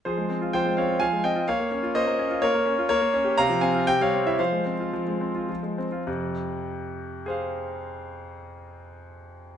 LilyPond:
<<
  \new Staff \with { instrumentName = "Grand piano" } { \time 3/4 \key f \minor \tempo 4 = 113 <aes' c''>4 <c'' g''>8 <des'' f''>8 <f'' aes''>8 <ees'' g''>8 | <des'' f''>4 <c'' ees''>4 <bes' des''>4 | <bes' des''>4 <f'' bes''>8 <f'' aes''>8 g''16 <des'' f''>8 e''16 | <c'' f''>2~ <c'' f''>8 r8 |
r2 <aes' c'' f''>4~ | <aes' c'' f''>2. | }
  \new Staff \with { instrumentName = "Grand piano" } { \time 3/4 \key f \minor f16 aes16 c'16 f'16 f16 aes16 c'16 f'16 f16 aes16 c'16 f'16 | bes16 bes16 des'16 f'16 bes16 bes16 des'16 f'16 bes16 bes16 des'16 f'16 | bes16 bes16 des'16 g'16 c16 f16 c'16 f'16 c16 g16 c'16 e'16 | f16 aes16 c'16 f'16 f16 aes16 c'16 f'16 f16 aes16 c'16 f'16 |
<f, c>2.~ | <f, c>2. | }
>>